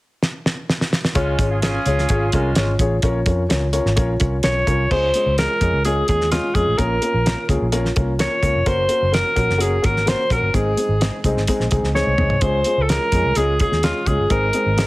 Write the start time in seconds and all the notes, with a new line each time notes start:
0.23 snare
0.46 snare
0.70 snare
0.81 snare
0.93 snare
1.05 snare
1.15 C#2 G#3 C#4 F4 G#4 C#5, kick, closed hi-hat
1.39 G#1 C#4 F4 G#4 C#5, kick, closed hi-hat
1.50 C#4 F4 G#4
1.62 C#4 F4 G#4 C#5, snare, closed hi-hat
1.86 C#2 C#4 F4 G#4 C#5, closed hi-hat
1.98 snare
2.09 G#1 C#4 F4 G#4 C#5, kick, closed hi-hat
2.32 C2 G#3 C#4 F4 G#4 A#4, kick, closed hi-hat
2.55 G#1 C#4 F4 G#4 C#5, snare, closed hi-hat
2.79 A1 C#4 F4 G#4 C#5, kick, closed hi-hat
3.02 A#1 C#4 F4 A#4 C#5, kick, closed hi-hat
3.26 F2 C#4 F4 A#4 C#5, kick, closed hi-hat
3.49 C#2 C#4 F4 A#4 C#5, snare, closed hi-hat
3.73 C#4 F4 A#4 C#5, closed hi-hat
3.85 G#1, snare
3.96 A#1 C#4 F4 A#4 C#5, kick, closed hi-hat
4.20 C2 C#4 F4 A#4 C#5, kick, closed hi-hat
4.43 B1 C#4 F4 A#4 C#5, snare, closed hi-hat
4.67 C2 C#4 F4 A#4 C#5, kick, closed hi-hat
4.91 C#2 G#3 C#4 F4 G#4 C5, kick, crash
5.14 G#3 C#4 F4 G#4, closed hi-hat
5.26 C#2
5.38 G#3 C#4 F4 G#4 A#4, snare, closed hi-hat
5.61 F2 G#3 C#4 F4 G#4, kick, closed hi-hat
5.73 C#2
5.85 G#3 C#4 F4 G#4, closed hi-hat
6.08 D#2 G#3 C#4 F4 G#4, kick, closed hi-hat
6.21 snare
6.31 G#3 C#4 F4 G#4, snare, closed hi-hat
6.55 F2 G#3 C#4 F4 G#4, kick, closed hi-hat
6.67 A1
6.78 A#1 A#3 C#4 F4 A#4, kick, closed hi-hat
7.02 A#3 C#4 F4 A#4, closed hi-hat
7.14 A#1
7.25 A#3 C#4 F4 A#4, snare, closed hi-hat
7.48 C#2 A#3 C#4 F4 G#4, kick, closed hi-hat
7.62 A#1
7.72 A#3 C#4 F4 A#4, closed hi-hat
7.85 snare
7.96 C2 A#3 C#4 F4 A#4, kick, closed hi-hat
8.19 A#3 C#4 F4 A#4 C#5, snare, closed hi-hat
8.42 C#2 A#3 C#4 F4 A#4, kick, closed hi-hat
8.56 F1
8.66 F#1 A#3 C#4 F#4 A#4 C5, kick, closed hi-hat
8.88 A#3 C#4 F#4 A#4, closed hi-hat
9.02 F#1
9.12 A#3 C#4 F#4 A#4, snare, closed hi-hat
9.36 A#1 A#3 C#4 F#4 A#4, kick, closed hi-hat
9.49 F#1, snare
9.58 A#3 C#4 F#4 G#4 A#4, closed hi-hat
9.82 G#1 A#3 C#4 F#4 A#4, kick, closed hi-hat
9.97 snare
10.06 A#3 C#4 F#4 A#4 C5, snare, closed hi-hat
10.30 A#1 A#3 C#4 F#4 A#4, kick, closed hi-hat
10.41 G1
10.53 G#1 G#3 C4 D#4 G#4, kick, closed hi-hat
10.76 G#3 C4 D#4 G#4, closed hi-hat
10.89 G#1
11.00 G#3 C4 D#4 G#4, snare, closed hi-hat
11.24 C2 G#3 C4 D#4 G#4, kick, closed hi-hat
11.36 G#1, snare
11.47 G#3 C4 D#4 G#4, kick, closed hi-hat
11.60 A#1, snare
11.71 C2 G#3 C4 D#4 G#4, kick, closed hi-hat
11.83 C#2, snare
11.94 G#3 C4 D#4 G#4 C#5, snare
12.07 C2
12.18 C2 G#3 C4 D#4 G#4, mid tom
12.30 floor tom
12.41 C#2 G#3 C#4 F4 G#4 C5, kick, closed hi-hat
12.64 G#3 C#4 F4 G#4, closed hi-hat
12.78 C#2
12.82 A4
12.89 G#3 C#4 F4 G#4 A#4, snare, closed hi-hat
13.12 F2 G#3 C#4 F4 G#4, kick, closed hi-hat
13.24 C2
13.35 C#2 G#3 C#4 F4 G#4, closed hi-hat
13.60 G#3 C#4 F4 G#4, kick, closed hi-hat
13.72 D#2, snare
13.83 G#3 C#4 F4 G#4, snare, closed hi-hat
14.06 C#2 G#3 C#4 F4 G#4, kick, closed hi-hat
14.18 G1
14.30 G#1 G#3 C4 D#4 G#4 A#4, kick, closed hi-hat
14.53 G#3 C4 D#4 G#4, closed hi-hat
14.66 G#1
14.77 G#3 C4 D#4 G#4, snare, closed hi-hat